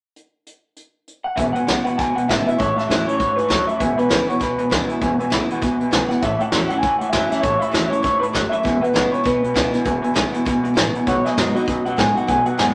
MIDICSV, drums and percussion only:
0, 0, Header, 1, 2, 480
1, 0, Start_track
1, 0, Key_signature, 4, "major"
1, 0, Tempo, 303183
1, 245, Time_signature, 4, 2, 24, 8
1, 20170, End_track
2, 0, Start_track
2, 0, Title_t, "Drums"
2, 254, Note_on_c, 9, 42, 57
2, 412, Note_off_c, 9, 42, 0
2, 735, Note_on_c, 9, 42, 59
2, 894, Note_off_c, 9, 42, 0
2, 1209, Note_on_c, 9, 42, 57
2, 1367, Note_off_c, 9, 42, 0
2, 1703, Note_on_c, 9, 42, 63
2, 1862, Note_off_c, 9, 42, 0
2, 2178, Note_on_c, 9, 36, 104
2, 2183, Note_on_c, 9, 42, 81
2, 2336, Note_off_c, 9, 36, 0
2, 2341, Note_off_c, 9, 42, 0
2, 2460, Note_on_c, 9, 42, 60
2, 2618, Note_off_c, 9, 42, 0
2, 2662, Note_on_c, 9, 38, 126
2, 2662, Note_on_c, 9, 42, 93
2, 2821, Note_off_c, 9, 38, 0
2, 2821, Note_off_c, 9, 42, 0
2, 2952, Note_on_c, 9, 42, 72
2, 3110, Note_off_c, 9, 42, 0
2, 3150, Note_on_c, 9, 36, 115
2, 3161, Note_on_c, 9, 38, 29
2, 3161, Note_on_c, 9, 42, 78
2, 3308, Note_off_c, 9, 36, 0
2, 3320, Note_off_c, 9, 38, 0
2, 3320, Note_off_c, 9, 42, 0
2, 3445, Note_on_c, 9, 42, 74
2, 3603, Note_off_c, 9, 42, 0
2, 3632, Note_on_c, 9, 36, 85
2, 3647, Note_on_c, 9, 38, 112
2, 3647, Note_on_c, 9, 42, 85
2, 3791, Note_off_c, 9, 36, 0
2, 3805, Note_off_c, 9, 38, 0
2, 3805, Note_off_c, 9, 42, 0
2, 3931, Note_on_c, 9, 42, 66
2, 4090, Note_off_c, 9, 42, 0
2, 4114, Note_on_c, 9, 36, 106
2, 4132, Note_on_c, 9, 42, 81
2, 4273, Note_off_c, 9, 36, 0
2, 4291, Note_off_c, 9, 42, 0
2, 4414, Note_on_c, 9, 38, 30
2, 4414, Note_on_c, 9, 42, 62
2, 4572, Note_off_c, 9, 38, 0
2, 4572, Note_off_c, 9, 42, 0
2, 4609, Note_on_c, 9, 38, 123
2, 4609, Note_on_c, 9, 42, 93
2, 4767, Note_off_c, 9, 38, 0
2, 4767, Note_off_c, 9, 42, 0
2, 4884, Note_on_c, 9, 42, 67
2, 5042, Note_off_c, 9, 42, 0
2, 5065, Note_on_c, 9, 36, 97
2, 5069, Note_on_c, 9, 42, 69
2, 5223, Note_off_c, 9, 36, 0
2, 5227, Note_off_c, 9, 42, 0
2, 5352, Note_on_c, 9, 42, 68
2, 5510, Note_off_c, 9, 42, 0
2, 5540, Note_on_c, 9, 38, 109
2, 5540, Note_on_c, 9, 42, 80
2, 5543, Note_on_c, 9, 36, 81
2, 5698, Note_off_c, 9, 38, 0
2, 5698, Note_off_c, 9, 42, 0
2, 5701, Note_off_c, 9, 36, 0
2, 5836, Note_on_c, 9, 42, 63
2, 5994, Note_off_c, 9, 42, 0
2, 6022, Note_on_c, 9, 36, 99
2, 6022, Note_on_c, 9, 42, 81
2, 6181, Note_off_c, 9, 36, 0
2, 6181, Note_off_c, 9, 42, 0
2, 6312, Note_on_c, 9, 42, 64
2, 6471, Note_off_c, 9, 42, 0
2, 6496, Note_on_c, 9, 38, 123
2, 6496, Note_on_c, 9, 42, 89
2, 6655, Note_off_c, 9, 38, 0
2, 6655, Note_off_c, 9, 42, 0
2, 6798, Note_on_c, 9, 42, 67
2, 6956, Note_off_c, 9, 42, 0
2, 6976, Note_on_c, 9, 38, 33
2, 6976, Note_on_c, 9, 42, 87
2, 6979, Note_on_c, 9, 36, 94
2, 7134, Note_off_c, 9, 38, 0
2, 7134, Note_off_c, 9, 42, 0
2, 7137, Note_off_c, 9, 36, 0
2, 7258, Note_on_c, 9, 42, 69
2, 7417, Note_off_c, 9, 42, 0
2, 7462, Note_on_c, 9, 36, 80
2, 7470, Note_on_c, 9, 38, 108
2, 7470, Note_on_c, 9, 42, 94
2, 7621, Note_off_c, 9, 36, 0
2, 7629, Note_off_c, 9, 38, 0
2, 7629, Note_off_c, 9, 42, 0
2, 7749, Note_on_c, 9, 42, 63
2, 7907, Note_off_c, 9, 42, 0
2, 7941, Note_on_c, 9, 36, 100
2, 7946, Note_on_c, 9, 42, 85
2, 8100, Note_off_c, 9, 36, 0
2, 8104, Note_off_c, 9, 42, 0
2, 8236, Note_on_c, 9, 42, 58
2, 8395, Note_off_c, 9, 42, 0
2, 8420, Note_on_c, 9, 38, 126
2, 8420, Note_on_c, 9, 42, 89
2, 8579, Note_off_c, 9, 38, 0
2, 8579, Note_off_c, 9, 42, 0
2, 8712, Note_on_c, 9, 42, 67
2, 8870, Note_off_c, 9, 42, 0
2, 8899, Note_on_c, 9, 42, 72
2, 8902, Note_on_c, 9, 36, 117
2, 9057, Note_off_c, 9, 42, 0
2, 9060, Note_off_c, 9, 36, 0
2, 9190, Note_on_c, 9, 42, 60
2, 9349, Note_off_c, 9, 42, 0
2, 9380, Note_on_c, 9, 38, 112
2, 9380, Note_on_c, 9, 42, 81
2, 9539, Note_off_c, 9, 38, 0
2, 9539, Note_off_c, 9, 42, 0
2, 9667, Note_on_c, 9, 38, 37
2, 9667, Note_on_c, 9, 42, 60
2, 9825, Note_off_c, 9, 38, 0
2, 9825, Note_off_c, 9, 42, 0
2, 9851, Note_on_c, 9, 38, 31
2, 9851, Note_on_c, 9, 42, 79
2, 9857, Note_on_c, 9, 36, 109
2, 10010, Note_off_c, 9, 38, 0
2, 10010, Note_off_c, 9, 42, 0
2, 10015, Note_off_c, 9, 36, 0
2, 10136, Note_on_c, 9, 42, 57
2, 10294, Note_off_c, 9, 42, 0
2, 10320, Note_on_c, 9, 38, 121
2, 10320, Note_on_c, 9, 42, 85
2, 10479, Note_off_c, 9, 38, 0
2, 10479, Note_off_c, 9, 42, 0
2, 10604, Note_on_c, 9, 42, 74
2, 10763, Note_off_c, 9, 42, 0
2, 10805, Note_on_c, 9, 38, 30
2, 10805, Note_on_c, 9, 42, 83
2, 10813, Note_on_c, 9, 36, 110
2, 10963, Note_off_c, 9, 38, 0
2, 10963, Note_off_c, 9, 42, 0
2, 10971, Note_off_c, 9, 36, 0
2, 11099, Note_on_c, 9, 42, 72
2, 11258, Note_off_c, 9, 42, 0
2, 11282, Note_on_c, 9, 38, 109
2, 11282, Note_on_c, 9, 42, 87
2, 11289, Note_on_c, 9, 36, 78
2, 11440, Note_off_c, 9, 38, 0
2, 11440, Note_off_c, 9, 42, 0
2, 11448, Note_off_c, 9, 36, 0
2, 11580, Note_on_c, 9, 38, 34
2, 11580, Note_on_c, 9, 42, 73
2, 11738, Note_off_c, 9, 38, 0
2, 11738, Note_off_c, 9, 42, 0
2, 11771, Note_on_c, 9, 36, 112
2, 11771, Note_on_c, 9, 38, 29
2, 11771, Note_on_c, 9, 42, 86
2, 11929, Note_off_c, 9, 36, 0
2, 11929, Note_off_c, 9, 38, 0
2, 11929, Note_off_c, 9, 42, 0
2, 12059, Note_on_c, 9, 42, 70
2, 12218, Note_off_c, 9, 42, 0
2, 12258, Note_on_c, 9, 38, 124
2, 12258, Note_on_c, 9, 42, 105
2, 12416, Note_off_c, 9, 38, 0
2, 12416, Note_off_c, 9, 42, 0
2, 12548, Note_on_c, 9, 42, 69
2, 12706, Note_off_c, 9, 42, 0
2, 12731, Note_on_c, 9, 36, 105
2, 12732, Note_on_c, 9, 42, 78
2, 12889, Note_off_c, 9, 36, 0
2, 12890, Note_off_c, 9, 42, 0
2, 13029, Note_on_c, 9, 42, 65
2, 13187, Note_off_c, 9, 42, 0
2, 13213, Note_on_c, 9, 36, 78
2, 13216, Note_on_c, 9, 38, 117
2, 13216, Note_on_c, 9, 42, 84
2, 13372, Note_off_c, 9, 36, 0
2, 13374, Note_off_c, 9, 38, 0
2, 13374, Note_off_c, 9, 42, 0
2, 13499, Note_on_c, 9, 42, 60
2, 13657, Note_off_c, 9, 42, 0
2, 13694, Note_on_c, 9, 36, 99
2, 13705, Note_on_c, 9, 38, 31
2, 13705, Note_on_c, 9, 42, 68
2, 13853, Note_off_c, 9, 36, 0
2, 13863, Note_off_c, 9, 38, 0
2, 13863, Note_off_c, 9, 42, 0
2, 13992, Note_on_c, 9, 42, 57
2, 14151, Note_off_c, 9, 42, 0
2, 14177, Note_on_c, 9, 38, 115
2, 14177, Note_on_c, 9, 42, 89
2, 14335, Note_off_c, 9, 38, 0
2, 14335, Note_off_c, 9, 42, 0
2, 14467, Note_on_c, 9, 42, 65
2, 14625, Note_off_c, 9, 42, 0
2, 14653, Note_on_c, 9, 36, 113
2, 14657, Note_on_c, 9, 38, 29
2, 14657, Note_on_c, 9, 42, 77
2, 14811, Note_off_c, 9, 36, 0
2, 14815, Note_off_c, 9, 38, 0
2, 14815, Note_off_c, 9, 42, 0
2, 14946, Note_on_c, 9, 42, 64
2, 15104, Note_off_c, 9, 42, 0
2, 15130, Note_on_c, 9, 36, 86
2, 15134, Note_on_c, 9, 38, 109
2, 15134, Note_on_c, 9, 42, 92
2, 15288, Note_off_c, 9, 36, 0
2, 15293, Note_off_c, 9, 38, 0
2, 15293, Note_off_c, 9, 42, 0
2, 15413, Note_on_c, 9, 38, 34
2, 15413, Note_on_c, 9, 42, 64
2, 15572, Note_off_c, 9, 38, 0
2, 15572, Note_off_c, 9, 42, 0
2, 15603, Note_on_c, 9, 38, 32
2, 15603, Note_on_c, 9, 42, 88
2, 15604, Note_on_c, 9, 36, 106
2, 15762, Note_off_c, 9, 36, 0
2, 15762, Note_off_c, 9, 38, 0
2, 15762, Note_off_c, 9, 42, 0
2, 15898, Note_on_c, 9, 42, 60
2, 16056, Note_off_c, 9, 42, 0
2, 16078, Note_on_c, 9, 38, 122
2, 16078, Note_on_c, 9, 42, 95
2, 16236, Note_off_c, 9, 38, 0
2, 16236, Note_off_c, 9, 42, 0
2, 16371, Note_on_c, 9, 42, 80
2, 16529, Note_off_c, 9, 42, 0
2, 16567, Note_on_c, 9, 36, 111
2, 16575, Note_on_c, 9, 38, 33
2, 16575, Note_on_c, 9, 42, 91
2, 16726, Note_off_c, 9, 36, 0
2, 16733, Note_off_c, 9, 38, 0
2, 16733, Note_off_c, 9, 42, 0
2, 16854, Note_on_c, 9, 42, 68
2, 17012, Note_off_c, 9, 42, 0
2, 17049, Note_on_c, 9, 38, 121
2, 17049, Note_on_c, 9, 42, 82
2, 17207, Note_off_c, 9, 38, 0
2, 17207, Note_off_c, 9, 42, 0
2, 17333, Note_on_c, 9, 42, 59
2, 17491, Note_off_c, 9, 42, 0
2, 17523, Note_on_c, 9, 42, 76
2, 17527, Note_on_c, 9, 36, 116
2, 17681, Note_off_c, 9, 42, 0
2, 17685, Note_off_c, 9, 36, 0
2, 17823, Note_on_c, 9, 38, 32
2, 17823, Note_on_c, 9, 42, 58
2, 17981, Note_off_c, 9, 38, 0
2, 17981, Note_off_c, 9, 42, 0
2, 18012, Note_on_c, 9, 38, 127
2, 18012, Note_on_c, 9, 42, 88
2, 18170, Note_off_c, 9, 38, 0
2, 18170, Note_off_c, 9, 42, 0
2, 18304, Note_on_c, 9, 42, 63
2, 18463, Note_off_c, 9, 42, 0
2, 18488, Note_on_c, 9, 36, 107
2, 18489, Note_on_c, 9, 42, 76
2, 18646, Note_off_c, 9, 36, 0
2, 18648, Note_off_c, 9, 42, 0
2, 18774, Note_on_c, 9, 42, 60
2, 18932, Note_off_c, 9, 42, 0
2, 18970, Note_on_c, 9, 36, 81
2, 18974, Note_on_c, 9, 38, 122
2, 18974, Note_on_c, 9, 42, 81
2, 19128, Note_off_c, 9, 36, 0
2, 19132, Note_off_c, 9, 38, 0
2, 19132, Note_off_c, 9, 42, 0
2, 19269, Note_on_c, 9, 42, 61
2, 19427, Note_off_c, 9, 42, 0
2, 19450, Note_on_c, 9, 36, 100
2, 19454, Note_on_c, 9, 42, 80
2, 19608, Note_off_c, 9, 36, 0
2, 19612, Note_off_c, 9, 42, 0
2, 19723, Note_on_c, 9, 42, 64
2, 19881, Note_off_c, 9, 42, 0
2, 19929, Note_on_c, 9, 38, 110
2, 19929, Note_on_c, 9, 42, 105
2, 20087, Note_off_c, 9, 38, 0
2, 20087, Note_off_c, 9, 42, 0
2, 20170, End_track
0, 0, End_of_file